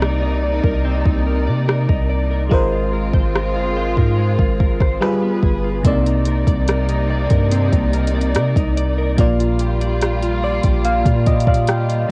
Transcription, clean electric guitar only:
0.00 0.84 C4 medium
0.00 0.22 D#4 medium
0.00 0.63 A#4 medium
0.00 0.42 D5 medium
0.22 1.05 D#4 medium
0.43 1.46 D5 medium
0.64 1.26 A#4 medium
0.85 2.96 C4 medium
1.06 1.88 D#4 medium
1.26 1.67 A#4 medium
1.47 2.08 D5 medium
1.68 2.30 A#4 medium
1.89 2.72 D#4 medium
2.10 2.60 D5 medium
2.31 2.93 A#4 medium
2.51 4.17 G#3 medium
2.72 3.55 F4 medium
2.93 3.34 A#4 medium
3.14 3.75 C5 medium
3.35 3.96 A#4 medium
3.56 4.38 F4 medium
3.76 4.80 C5 medium
3.97 4.59 A#4 medium
4.18 5.01 G#3 medium
4.39 5.10 F4 medium
4.60 5.10 A#4 medium
4.81 5.10 C5 medium
5.02 8.52 G3 medium
5.23 5.85 B3 medium
5.43 5.93 G#4 medium
5.64 5.93 F4 medium
5.85 7.51 C4 medium
6.06 6.88 D#4 medium
6.27 6.68 A#4 medium
6.48 7.10 D5 medium
6.69 7.31 A#4 medium
6.89 7.72 D#4 medium
7.10 8.14 D5 medium
7.31 7.93 A#4 medium
7.52 9.18 C4 medium
7.73 8.55 D#4 medium
7.94 8.35 A#4 medium
8.14 8.77 D5 medium
8.35 8.97 A#4 medium
8.56 9.27 D#4 medium
8.77 9.81 D5 medium
8.98 9.60 A#4 medium
9.19 10.85 A#3 medium
9.40 10.22 F4 medium
9.60 10.02 G4 medium
9.81 10.43 D5 medium
10.02 10.64 G4 medium
10.23 11.05 F4 medium
10.44 11.47 D5 medium
10.64 11.26 G4 medium
10.85 12.09 A#3 medium
11.06 11.88 F4 medium
11.27 11.68 G4 medium
11.47 12.11 D5 medium
11.68 12.11 G4 medium
11.89 12.11 F4 medium

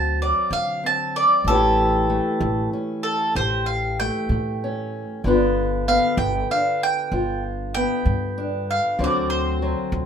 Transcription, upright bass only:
0.00 0.30 D2 medium
0.51 1.24 D3 medium
1.44 2.18 A1 medium
2.41 2.65 A1 loud
3.35 4.08 A1 medium
4.29 5.02 A2 medium
5.24 5.97 G1 medium
6.17 6.42 G1 loud
7.12 7.84 G1 medium
8.05 8.78 G2 medium
8.99 9.72 D2 medium
9.92 10.06 D2 loud

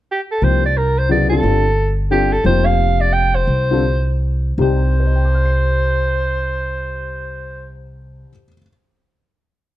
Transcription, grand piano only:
0.42 0.61 C3 soft
0.42 0.62 F3 soft
0.42 0.62 A#3 soft
0.42 0.62 D#4 soft
0.42 0.62 G4 medium
1.09 1.29 C#3 medium
1.09 1.29 F#3 soft
1.09 1.29 B3 soft
1.09 1.30 E4 soft
1.09 1.30 G#4 medium
1.30 1.42 D3 medium
1.30 1.42 G3 medium
1.30 1.43 C4 soft
1.30 1.43 F4 soft
1.30 1.44 A4 medium
1.43 1.63 D3 soft
1.43 1.63 G3 soft
1.43 1.63 C4 soft
1.43 1.64 F4 soft
1.43 1.64 A4 soft
2.11 2.30 D3 medium
2.11 2.30 G3 soft
2.11 2.31 C4 soft
2.11 2.31 F4 soft
2.11 2.31 A4 medium
2.44 3.40 C3 medium
2.44 3.40 F3 medium
2.44 3.40 A#3 medium
2.44 3.40 D#4 medium
2.44 3.41 G4 medium
3.71 3.82 D3 medium
3.71 3.82 G3 medium
3.71 3.83 C4 soft
3.71 3.83 F4 medium
3.71 3.83 A4 medium
4.58 8.28 C2 medium
4.58 8.28 C3 medium
4.58 8.29 G3 medium
4.58 8.30 D#4 medium
4.58 8.30 G4 medium
5.00 8.44 C5 soft
5.07 8.47 D#5 soft
5.15 8.52 G5 soft
5.25 8.56 D6 soft
5.34 8.61 F6 soft
5.46 8.67 C7 soft

